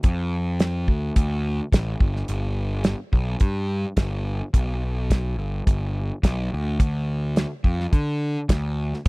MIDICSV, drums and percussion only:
0, 0, Header, 1, 2, 480
1, 0, Start_track
1, 0, Tempo, 563380
1, 45, Time_signature, 4, 2, 24, 8
1, 7738, End_track
2, 0, Start_track
2, 0, Title_t, "Drums"
2, 26, Note_on_c, 9, 42, 57
2, 34, Note_on_c, 9, 36, 102
2, 111, Note_off_c, 9, 42, 0
2, 119, Note_off_c, 9, 36, 0
2, 508, Note_on_c, 9, 42, 53
2, 515, Note_on_c, 9, 38, 95
2, 593, Note_off_c, 9, 42, 0
2, 600, Note_off_c, 9, 38, 0
2, 750, Note_on_c, 9, 36, 73
2, 835, Note_off_c, 9, 36, 0
2, 988, Note_on_c, 9, 42, 58
2, 990, Note_on_c, 9, 36, 93
2, 1073, Note_off_c, 9, 42, 0
2, 1075, Note_off_c, 9, 36, 0
2, 1469, Note_on_c, 9, 36, 72
2, 1476, Note_on_c, 9, 42, 59
2, 1484, Note_on_c, 9, 38, 94
2, 1554, Note_off_c, 9, 36, 0
2, 1561, Note_off_c, 9, 42, 0
2, 1569, Note_off_c, 9, 38, 0
2, 1708, Note_on_c, 9, 36, 92
2, 1793, Note_off_c, 9, 36, 0
2, 1839, Note_on_c, 9, 38, 30
2, 1925, Note_off_c, 9, 38, 0
2, 1944, Note_on_c, 9, 42, 57
2, 2029, Note_off_c, 9, 42, 0
2, 2418, Note_on_c, 9, 42, 49
2, 2426, Note_on_c, 9, 38, 97
2, 2503, Note_off_c, 9, 42, 0
2, 2511, Note_off_c, 9, 38, 0
2, 2664, Note_on_c, 9, 36, 74
2, 2750, Note_off_c, 9, 36, 0
2, 2895, Note_on_c, 9, 42, 50
2, 2903, Note_on_c, 9, 36, 91
2, 2980, Note_off_c, 9, 42, 0
2, 2988, Note_off_c, 9, 36, 0
2, 3380, Note_on_c, 9, 42, 54
2, 3383, Note_on_c, 9, 36, 73
2, 3387, Note_on_c, 9, 38, 99
2, 3465, Note_off_c, 9, 42, 0
2, 3468, Note_off_c, 9, 36, 0
2, 3472, Note_off_c, 9, 38, 0
2, 3867, Note_on_c, 9, 36, 104
2, 3870, Note_on_c, 9, 42, 57
2, 3952, Note_off_c, 9, 36, 0
2, 3955, Note_off_c, 9, 42, 0
2, 4349, Note_on_c, 9, 36, 65
2, 4352, Note_on_c, 9, 42, 57
2, 4359, Note_on_c, 9, 38, 96
2, 4434, Note_off_c, 9, 36, 0
2, 4437, Note_off_c, 9, 42, 0
2, 4444, Note_off_c, 9, 38, 0
2, 4831, Note_on_c, 9, 36, 90
2, 4832, Note_on_c, 9, 42, 54
2, 4916, Note_off_c, 9, 36, 0
2, 4917, Note_off_c, 9, 42, 0
2, 5311, Note_on_c, 9, 36, 81
2, 5316, Note_on_c, 9, 42, 58
2, 5323, Note_on_c, 9, 38, 102
2, 5397, Note_off_c, 9, 36, 0
2, 5401, Note_off_c, 9, 42, 0
2, 5408, Note_off_c, 9, 38, 0
2, 5792, Note_on_c, 9, 36, 98
2, 5792, Note_on_c, 9, 42, 58
2, 5877, Note_off_c, 9, 36, 0
2, 5878, Note_off_c, 9, 42, 0
2, 6273, Note_on_c, 9, 42, 48
2, 6281, Note_on_c, 9, 38, 91
2, 6358, Note_off_c, 9, 42, 0
2, 6366, Note_off_c, 9, 38, 0
2, 6511, Note_on_c, 9, 36, 73
2, 6596, Note_off_c, 9, 36, 0
2, 6644, Note_on_c, 9, 38, 29
2, 6729, Note_off_c, 9, 38, 0
2, 6754, Note_on_c, 9, 36, 93
2, 6755, Note_on_c, 9, 42, 47
2, 6839, Note_off_c, 9, 36, 0
2, 6840, Note_off_c, 9, 42, 0
2, 7235, Note_on_c, 9, 36, 77
2, 7235, Note_on_c, 9, 42, 56
2, 7243, Note_on_c, 9, 38, 96
2, 7320, Note_off_c, 9, 42, 0
2, 7321, Note_off_c, 9, 36, 0
2, 7328, Note_off_c, 9, 38, 0
2, 7610, Note_on_c, 9, 38, 31
2, 7695, Note_off_c, 9, 38, 0
2, 7738, End_track
0, 0, End_of_file